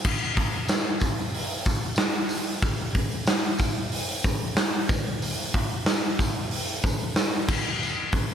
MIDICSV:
0, 0, Header, 1, 2, 480
1, 0, Start_track
1, 0, Tempo, 647249
1, 33, Time_signature, 4, 2, 24, 8
1, 6185, End_track
2, 0, Start_track
2, 0, Title_t, "Drums"
2, 33, Note_on_c, 9, 54, 76
2, 34, Note_on_c, 9, 49, 98
2, 36, Note_on_c, 9, 36, 99
2, 107, Note_off_c, 9, 54, 0
2, 109, Note_off_c, 9, 49, 0
2, 110, Note_off_c, 9, 36, 0
2, 272, Note_on_c, 9, 46, 60
2, 275, Note_on_c, 9, 36, 86
2, 346, Note_off_c, 9, 46, 0
2, 349, Note_off_c, 9, 36, 0
2, 507, Note_on_c, 9, 54, 100
2, 514, Note_on_c, 9, 46, 70
2, 515, Note_on_c, 9, 38, 109
2, 581, Note_off_c, 9, 54, 0
2, 588, Note_off_c, 9, 46, 0
2, 589, Note_off_c, 9, 38, 0
2, 742, Note_on_c, 9, 54, 84
2, 750, Note_on_c, 9, 46, 54
2, 753, Note_on_c, 9, 36, 79
2, 816, Note_off_c, 9, 54, 0
2, 825, Note_off_c, 9, 46, 0
2, 827, Note_off_c, 9, 36, 0
2, 995, Note_on_c, 9, 46, 80
2, 1069, Note_off_c, 9, 46, 0
2, 1226, Note_on_c, 9, 54, 77
2, 1231, Note_on_c, 9, 46, 58
2, 1232, Note_on_c, 9, 36, 88
2, 1300, Note_off_c, 9, 54, 0
2, 1305, Note_off_c, 9, 46, 0
2, 1306, Note_off_c, 9, 36, 0
2, 1452, Note_on_c, 9, 54, 103
2, 1467, Note_on_c, 9, 38, 113
2, 1467, Note_on_c, 9, 46, 77
2, 1526, Note_off_c, 9, 54, 0
2, 1541, Note_off_c, 9, 38, 0
2, 1541, Note_off_c, 9, 46, 0
2, 1699, Note_on_c, 9, 54, 76
2, 1708, Note_on_c, 9, 46, 62
2, 1773, Note_off_c, 9, 54, 0
2, 1783, Note_off_c, 9, 46, 0
2, 1944, Note_on_c, 9, 46, 75
2, 1946, Note_on_c, 9, 36, 109
2, 1947, Note_on_c, 9, 54, 70
2, 2019, Note_off_c, 9, 46, 0
2, 2020, Note_off_c, 9, 36, 0
2, 2022, Note_off_c, 9, 54, 0
2, 2185, Note_on_c, 9, 46, 57
2, 2187, Note_on_c, 9, 36, 77
2, 2259, Note_off_c, 9, 46, 0
2, 2261, Note_off_c, 9, 36, 0
2, 2422, Note_on_c, 9, 54, 101
2, 2428, Note_on_c, 9, 46, 80
2, 2429, Note_on_c, 9, 38, 113
2, 2496, Note_off_c, 9, 54, 0
2, 2502, Note_off_c, 9, 46, 0
2, 2503, Note_off_c, 9, 38, 0
2, 2659, Note_on_c, 9, 54, 84
2, 2665, Note_on_c, 9, 46, 60
2, 2667, Note_on_c, 9, 36, 84
2, 2733, Note_off_c, 9, 54, 0
2, 2739, Note_off_c, 9, 46, 0
2, 2741, Note_off_c, 9, 36, 0
2, 2905, Note_on_c, 9, 46, 85
2, 2980, Note_off_c, 9, 46, 0
2, 3147, Note_on_c, 9, 36, 89
2, 3147, Note_on_c, 9, 46, 67
2, 3148, Note_on_c, 9, 54, 74
2, 3221, Note_off_c, 9, 46, 0
2, 3222, Note_off_c, 9, 36, 0
2, 3222, Note_off_c, 9, 54, 0
2, 3386, Note_on_c, 9, 46, 89
2, 3387, Note_on_c, 9, 38, 113
2, 3395, Note_on_c, 9, 54, 95
2, 3461, Note_off_c, 9, 38, 0
2, 3461, Note_off_c, 9, 46, 0
2, 3470, Note_off_c, 9, 54, 0
2, 3627, Note_on_c, 9, 46, 63
2, 3629, Note_on_c, 9, 36, 111
2, 3633, Note_on_c, 9, 54, 67
2, 3701, Note_off_c, 9, 46, 0
2, 3703, Note_off_c, 9, 36, 0
2, 3707, Note_off_c, 9, 54, 0
2, 3872, Note_on_c, 9, 46, 82
2, 3872, Note_on_c, 9, 54, 64
2, 3946, Note_off_c, 9, 46, 0
2, 3946, Note_off_c, 9, 54, 0
2, 4108, Note_on_c, 9, 46, 58
2, 4110, Note_on_c, 9, 36, 88
2, 4182, Note_off_c, 9, 46, 0
2, 4184, Note_off_c, 9, 36, 0
2, 4348, Note_on_c, 9, 38, 113
2, 4348, Note_on_c, 9, 46, 80
2, 4359, Note_on_c, 9, 54, 91
2, 4422, Note_off_c, 9, 46, 0
2, 4423, Note_off_c, 9, 38, 0
2, 4433, Note_off_c, 9, 54, 0
2, 4592, Note_on_c, 9, 36, 84
2, 4594, Note_on_c, 9, 46, 57
2, 4601, Note_on_c, 9, 54, 83
2, 4666, Note_off_c, 9, 36, 0
2, 4668, Note_off_c, 9, 46, 0
2, 4675, Note_off_c, 9, 54, 0
2, 4828, Note_on_c, 9, 46, 81
2, 4902, Note_off_c, 9, 46, 0
2, 5072, Note_on_c, 9, 36, 89
2, 5072, Note_on_c, 9, 46, 58
2, 5090, Note_on_c, 9, 54, 79
2, 5146, Note_off_c, 9, 36, 0
2, 5147, Note_off_c, 9, 46, 0
2, 5164, Note_off_c, 9, 54, 0
2, 5310, Note_on_c, 9, 46, 82
2, 5311, Note_on_c, 9, 38, 108
2, 5318, Note_on_c, 9, 54, 101
2, 5384, Note_off_c, 9, 46, 0
2, 5385, Note_off_c, 9, 38, 0
2, 5393, Note_off_c, 9, 54, 0
2, 5551, Note_on_c, 9, 49, 103
2, 5552, Note_on_c, 9, 36, 109
2, 5558, Note_on_c, 9, 54, 83
2, 5625, Note_off_c, 9, 49, 0
2, 5626, Note_off_c, 9, 36, 0
2, 5632, Note_off_c, 9, 54, 0
2, 5806, Note_on_c, 9, 54, 77
2, 5880, Note_off_c, 9, 54, 0
2, 6025, Note_on_c, 9, 46, 60
2, 6029, Note_on_c, 9, 36, 87
2, 6045, Note_on_c, 9, 54, 29
2, 6099, Note_off_c, 9, 46, 0
2, 6103, Note_off_c, 9, 36, 0
2, 6119, Note_off_c, 9, 54, 0
2, 6185, End_track
0, 0, End_of_file